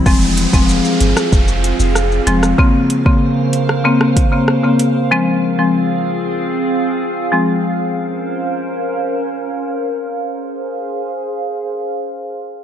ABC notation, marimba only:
X:1
M:4/4
L:1/16
Q:1/4=95
K:Fm
V:1 name="Marimba" clef=bass
[F,A,C]3 [F,A,C] z8 z2 [F,A,C] z | [D,B,C]3 [D,B,C] z4 [D,B,C] z2 [D,B,C] z [D,B,C] z2 | [F,A,C]3 [F,A,C] z8 z2 [F,A,C] z | z16 |
z16 |]